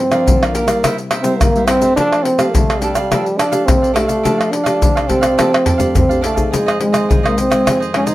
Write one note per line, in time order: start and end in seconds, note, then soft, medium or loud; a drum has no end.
0.00 0.23 G2 medium
0.00 0.47 C4 medium
0.09 0.35 F3 medium
0.09 0.35 A#3 medium
0.09 0.35 D4 medium
0.09 0.40 D5 medium
0.09 0.40 F5 medium
0.09 pandeiro medium
0.09 tamborim medium
0.09 shaker medium
0.14 0.40 A#4 soft
0.26 0.80 D3 medium
0.26 pandeiro medium
0.26 shaker medium
0.26 surdo loud
0.40 0.65 F3 medium
0.40 0.65 A#3 medium
0.40 0.65 D4 medium
0.40 0.54 A#4 soft
0.40 0.54 D5 soft
0.40 0.55 F5 soft
0.40 pandeiro soft
0.40 tamborim medium
0.40 shaker soft
0.47 0.54 C4 medium
0.52 0.96 A#3 medium
0.52 0.68 G4 soft
0.52 0.68 A#4 medium
0.52 0.68 D5 soft
0.52 0.67 F5 medium
0.52 pandeiro medium
0.52 shaker medium
0.66 1.20 G3 medium
0.66 1.20 A#3 medium
0.66 1.21 E4 medium
0.66 0.82 A#4 medium
0.66 0.82 D5 medium
0.66 0.82 F5 medium
0.66 pandeiro medium
0.66 tamborim medium
0.66 shaker medium
0.83 1.37 C3 medium
0.83 0.97 E4 medium
0.83 0.97 A#4 medium
0.83 0.97 C5 medium
0.83 0.97 E5 medium
0.83 pandeiro medium
0.83 tamborim medium
0.83 shaker medium
0.83 surdo medium
0.98 muted cavaquinho stroke soft
0.98 pandeiro soft
0.98 shaker soft
1.11 1.24 E4 soft
1.11 1.25 A#4 medium
1.11 1.24 C5 medium
1.11 1.24 E5 medium
1.11 pandeiro medium
1.11 tamborim medium
1.22 1.49 G3 medium
1.22 1.49 A#3 medium
1.22 1.40 C4 medium
1.22 1.49 E4 medium
1.22 1.53 C5 medium
1.22 1.53 E5 medium
1.22 pandeiro medium
1.22 shaker medium
1.27 1.54 A#4 medium
1.38 1.95 G2 medium
1.38 1.68 A#3 loud
1.38 pandeiro medium
1.38 tamborim medium
1.38 shaker medium
1.38 surdo loud
1.55 1.79 G3 medium
1.55 1.79 A#3 medium
1.55 1.79 E4 medium
1.55 1.67 A#4 soft
1.55 1.68 C5 soft
1.55 1.68 E5 medium
1.55 pandeiro soft
1.55 shaker soft
1.67 1.95 C4 loud
1.67 1.82 E4 medium
1.67 1.82 A#4 medium
1.67 1.82 C5 medium
1.67 1.81 E5 medium
1.67 pandeiro medium
1.67 tamborim medium
1.67 shaker medium
1.80 2.34 A3 medium
1.80 2.34 D4 medium
1.80 2.35 G4 medium
1.80 1.97 A#4 soft
1.80 1.96 C5 soft
1.80 1.96 E5 medium
1.80 pandeiro soft
1.80 shaker medium
1.96 2.51 F3 medium
1.96 2.25 D4 loud
1.96 2.11 D4 medium
1.96 2.11 A4 medium
1.96 pandeiro medium
1.96 shaker medium
1.96 surdo medium
2.00 2.12 D5 medium
2.00 2.12 F5 medium
2.13 2.26 A4 soft
2.13 2.26 D5 soft
2.13 2.25 F5 soft
2.13 pandeiro soft
2.13 tamborim medium
2.13 shaker soft
2.23 2.54 C4 loud
2.23 muted cavaquinho stroke soft
2.23 pandeiro medium
2.38 2.77 A3 medium
2.38 2.77 D4 medium
2.38 2.77 G4 medium
2.38 2.68 A4 soft
2.38 2.67 D5 medium
2.38 2.67 F5 medium
2.38 pandeiro medium
2.38 tamborim medium
2.38 shaker medium
2.53 3.08 C3 medium
2.53 2.81 A3 loud
2.53 pandeiro medium
2.53 shaker medium
2.53 surdo loud
2.70 2.82 A4 soft
2.70 2.83 D5 soft
2.70 2.83 F5 medium
2.70 pandeiro soft
2.70 tamborim medium
2.70 shaker soft
2.80 3.39 G3 loud
2.80 2.99 A3 medium
2.80 2.99 D4 medium
2.80 2.96 D4 medium
2.80 2.99 G4 medium
2.80 2.96 A4 medium
2.80 pandeiro medium
2.80 shaker medium
2.84 2.96 D5 medium
2.84 2.95 F5 medium
2.95 3.10 A4 medium
2.95 3.10 D5 medium
2.95 3.09 F5 medium
2.95 pandeiro medium
2.95 tamborim medium
2.95 shaker medium
3.10 3.65 F3 medium
3.10 3.49 A3 medium
3.10 3.49 D4 medium
3.10 3.24 D4 medium
3.10 3.49 G4 medium
3.10 3.25 A4 medium
3.10 3.25 D5 medium
3.10 3.25 F5 medium
3.10 pandeiro medium
3.10 tamborim medium
3.10 shaker medium
3.10 surdo medium
3.26 muted cavaquinho stroke soft
3.26 pandeiro soft
3.26 shaker soft
3.38 3.67 D4 loud
3.38 3.52 D4 soft
3.38 3.52 A4 medium
3.38 3.51 D5 medium
3.38 3.50 F5 medium
3.38 pandeiro medium
3.38 tamborim medium
3.38 shaker medium
3.51 3.91 A3 medium
3.51 3.91 D4 medium
3.51 3.91 G4 medium
3.51 3.81 A4 medium
3.51 3.81 D5 medium
3.51 3.80 F5 medium
3.51 pandeiro medium
3.51 shaker medium
3.66 4.22 C3 medium
3.66 3.94 C4 loud
3.66 pandeiro medium
3.66 tamborim medium
3.66 shaker medium
3.66 surdo loud
3.82 3.93 A4 soft
3.82 3.94 D5 soft
3.82 3.94 F5 soft
3.82 pandeiro soft
3.82 shaker soft
3.94 4.53 A3 loud
3.94 4.13 A3 medium
3.94 4.08 D4 medium
3.94 4.13 D4 medium
3.94 4.13 G4 medium
3.94 4.08 A4 medium
3.94 4.07 D5 medium
3.94 4.06 F5 medium
3.94 pandeiro medium
3.94 tamborim medium
4.08 4.22 A4 soft
4.08 4.23 D5 soft
4.08 4.22 F5 medium
4.08 pandeiro medium
4.08 shaker medium
4.23 4.79 F3 medium
4.23 4.63 A3 medium
4.23 4.37 D4 medium
4.23 4.63 D4 medium
4.23 4.63 G4 medium
4.23 4.37 A4 medium
4.23 4.38 D5 medium
4.23 4.37 F5 medium
4.23 pandeiro medium
4.23 shaker medium
4.23 surdo medium
4.38 4.50 A4 soft
4.38 4.51 D5 soft
4.38 4.51 F5 soft
4.38 pandeiro soft
4.38 tamborim medium
4.38 shaker soft
4.51 5.11 D4 loud
4.51 muted cavaquinho stroke soft
4.51 pandeiro medium
4.63 5.05 A3 medium
4.63 5.05 D4 medium
4.63 5.05 G4 medium
4.63 4.94 A4 medium
4.63 4.93 D5 medium
4.63 4.93 F5 medium
4.63 pandeiro medium
4.63 tamborim medium
4.63 shaker medium
4.82 5.36 C3 medium
4.82 pandeiro medium
4.82 shaker medium
4.82 surdo loud
4.95 5.07 A4 soft
4.95 5.08 D5 soft
4.95 5.08 F5 soft
4.95 pandeiro soft
4.95 tamborim medium
4.95 shaker soft
5.08 5.26 A3 medium
5.08 5.95 C4 loud
5.08 5.22 D4 soft
5.08 5.27 D4 medium
5.08 5.27 G4 medium
5.08 5.21 A4 medium
5.08 5.20 D5 soft
5.08 5.20 F5 medium
5.08 pandeiro medium
5.08 surdo medium
5.21 5.37 A4 medium
5.21 5.36 D5 medium
5.21 5.36 F5 medium
5.21 pandeiro medium
5.21 tamborim medium
5.21 shaker medium
5.38 5.93 F3 medium
5.38 5.77 A3 medium
5.38 5.51 D4 medium
5.38 5.77 D4 medium
5.38 5.78 G4 medium
5.38 5.51 A4 medium
5.38 5.52 D5 medium
5.38 5.52 F5 medium
5.38 pandeiro medium
5.38 tamborim loud
5.38 shaker medium
5.38 surdo medium
5.52 muted cavaquinho stroke soft
5.52 pandeiro soft
5.52 tamborim loud
5.52 shaker soft
5.65 5.79 D4 soft
5.65 5.78 A4 medium
5.65 5.78 D5 medium
5.65 5.77 F5 medium
5.65 surdo medium
5.65 pandeiro medium
5.78 6.04 A3 medium
5.78 6.04 D4 medium
5.78 6.05 G4 medium
5.78 6.08 A4 medium
5.78 6.08 D5 medium
5.78 6.07 F5 medium
5.78 surdo medium
5.78 pandeiro medium
5.78 shaker medium
5.95 6.50 C3 medium
5.95 6.23 C4 medium
5.95 surdo medium
5.95 pandeiro medium
5.95 shaker medium
5.95 surdo medium
6.09 6.34 A3 medium
6.09 6.35 D4 medium
6.09 6.35 G4 medium
6.09 6.21 A4 soft
6.09 6.21 D5 soft
6.09 6.21 F5 medium
6.09 pandeiro soft
6.09 shaker soft
6.21 6.55 A3 medium
6.21 6.36 D4 medium
6.21 6.35 A4 medium
6.21 6.34 D5 medium
6.21 6.33 F5 medium
6.21 pandeiro medium
6.34 6.80 C4 medium
6.34 6.81 D#4 medium
6.34 6.90 G#4 medium
6.34 6.50 A4 soft
6.34 6.50 D5 soft
6.34 6.49 F5 soft
6.34 pandeiro medium
6.34 shaker medium
6.34 surdo medium
6.51 7.06 F2 medium
6.51 6.81 G#3 medium
6.51 6.65 F4 soft
6.51 6.65 G#4 soft
6.51 6.66 C5 soft
6.51 6.65 D#5 medium
6.51 pandeiro medium
6.51 shaker medium
6.51 surdo medium
6.66 6.78 G#4 medium
6.66 6.79 C5 medium
6.66 6.79 D#5 medium
6.66 pandeiro soft
6.66 tamborim medium
6.66 shaker soft
6.80 7.07 D#3 medium
6.80 7.08 G#3 medium
6.80 7.28 G#3 medium
6.80 7.08 C4 medium
6.80 muted cavaquinho stroke soft
6.80 pandeiro medium
6.92 7.08 G#4 soft
6.92 7.08 C5 medium
6.92 7.07 D#5 medium
6.92 pandeiro medium
6.92 tamborim medium
6.92 shaker medium
7.09 7.64 C3 medium
7.09 7.22 F4 medium
7.09 7.23 G#4 soft
7.09 7.23 C5 soft
7.09 7.22 D#5 medium
7.09 pandeiro medium
7.09 shaker medium
7.09 surdo loud
7.23 7.48 D#3 medium
7.23 7.48 G#3 medium
7.23 7.41 A#3 medium
7.23 7.49 C4 medium
7.23 7.50 G#4 medium
7.23 7.49 C5 medium
7.23 7.49 D#5 medium
7.23 pandeiro soft
7.23 tamborim medium
7.23 shaker soft
7.38 7.80 C4 loud
7.38 pandeiro medium
7.38 shaker medium
7.50 7.89 D#3 medium
7.50 7.90 G#3 medium
7.50 7.90 C4 medium
7.50 7.64 G#4 medium
7.50 7.65 C5 medium
7.50 7.64 D#5 medium
7.50 pandeiro medium
7.50 tamborim medium
7.50 shaker medium
7.65 8.15 F2 medium
7.65 7.79 F4 soft
7.65 7.79 G#4 medium
7.65 7.79 C5 medium
7.65 7.79 D#5 medium
7.65 pandeiro medium
7.65 tamborim medium
7.65 shaker medium
7.65 surdo medium
7.80 7.92 G#4 medium
7.80 7.93 C5 medium
7.80 7.94 D#5 medium
7.80 pandeiro soft
7.80 shaker soft
7.93 8.15 D#3 medium
7.93 8.15 G#3 medium
7.93 8.15 C4 medium
7.93 8.10 C#4 loud
7.93 8.07 F4 medium
7.93 8.06 G#4 medium
7.93 8.06 C5 medium
7.93 8.05 D#5 medium
7.93 pandeiro medium
7.93 tamborim medium
8.06 8.15 D#4 loud
8.06 8.15 G#4 medium
8.06 8.15 C5 medium
8.06 8.15 D#5 medium
8.06 pandeiro medium
8.06 shaker medium